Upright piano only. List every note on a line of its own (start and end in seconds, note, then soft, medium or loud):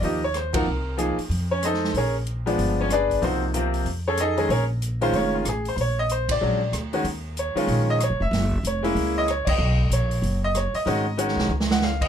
0.03 0.20 F3 medium
0.03 0.20 A#3 medium
0.03 0.21 D#4 soft
0.03 0.21 G4 medium
0.03 0.22 D#5 medium
0.24 0.35 C#5 medium
0.37 0.54 C5 medium
0.53 0.64 F3 medium
0.53 0.65 A#3 medium
0.53 0.65 D#4 medium
0.53 0.65 F#4 medium
0.53 0.96 A#4 medium
0.97 1.15 F3 medium
0.97 1.15 A#3 medium
0.97 1.15 D#4 medium
0.97 1.16 G#4 medium
1.51 1.63 C#4 medium
1.51 1.62 C#5 medium
1.65 1.94 D#4 medium
1.65 1.94 A4 medium
1.65 1.93 C5 medium
1.65 1.93 D#5 medium
1.97 2.15 C#4 medium
1.97 2.15 G#4 medium
1.97 2.15 A#4 medium
1.97 2.14 C#5 medium
2.46 2.88 F3 medium
2.46 2.88 G#3 medium
2.46 2.88 B3 medium
2.46 2.88 D4 medium
2.81 2.91 C#4 medium
2.81 2.91 C#5 medium
2.92 3.21 D4 medium
2.92 3.21 G#4 medium
2.92 3.21 B4 medium
2.92 3.21 D5 medium
3.22 3.52 C3 soft
3.22 3.53 F3 soft
3.22 3.53 A#3 soft
3.22 3.42 C4 medium
3.22 3.53 D#4 medium
3.22 3.42 F#4 medium
3.22 3.42 C5 medium
3.54 3.86 C3 medium
3.54 3.86 F3 medium
3.54 3.86 A#3 medium
3.54 3.86 C4 medium
4.08 4.18 C#4 medium
4.08 4.19 G#4 medium
4.08 4.19 A4 medium
4.08 4.18 C#5 medium
4.20 4.49 D#4 medium
4.20 4.36 G#4 medium
4.20 4.49 A4 medium
4.20 4.49 D#5 medium
4.37 4.48 D#3 medium
4.37 4.49 G#3 medium
4.37 4.49 C#4 medium
4.37 4.49 G#4 medium
4.51 4.63 C#4 medium
4.51 4.62 G#4 medium
4.51 4.63 A#4 medium
4.51 4.62 C#5 medium
5.01 5.43 D#3 medium
5.01 5.43 G#3 medium
5.01 5.43 C#4 medium
5.01 5.34 F4 medium
5.01 5.14 C5 medium
5.16 5.33 C#5 medium
5.35 5.46 F4 medium
5.49 5.66 G#4 medium
5.68 5.75 C5 medium
5.76 5.78 C5 medium
5.81 5.98 C#5 medium
5.99 6.10 D#5 medium
6.12 6.29 C5 medium
6.31 6.71 D5 medium
6.41 6.59 F#3 medium
6.41 6.59 G#3 soft
6.41 6.59 C#4 soft
6.41 6.59 D4 medium
6.93 7.04 D#3 medium
6.93 7.04 G#3 medium
6.93 7.04 C#4 medium
6.93 7.04 F#4 medium
7.39 7.86 C#5 medium
7.55 7.97 D#3 medium
7.55 7.98 G#3 medium
7.55 7.98 C#4 medium
7.55 7.98 F4 medium
7.90 8.01 D#5 loud
8.03 8.21 C#5 medium
8.22 8.62 E5 medium
8.67 9.13 C#5 medium
8.83 9.24 G#3 medium
8.83 9.25 A#3 medium
8.83 9.25 C#4 medium
8.83 9.25 E4 medium
9.18 9.28 D#5 loud
9.30 9.48 C#5 medium
9.48 9.88 D#5 loud
9.93 10.40 C#5 medium
10.44 10.55 D#5 loud
10.57 10.74 C#5 medium
10.75 11.15 D#5 medium
10.86 11.03 D#3 medium
10.86 11.04 G#3 medium
10.86 11.04 C#4 medium
10.86 11.04 F#4 medium
11.17 11.49 D#3 medium
11.17 11.50 G#3 medium
11.17 11.50 C#4 medium
11.17 11.50 F#4 medium
11.72 11.82 F#5 medium
11.83 12.01 F5 medium
12.01 12.08 D#5 medium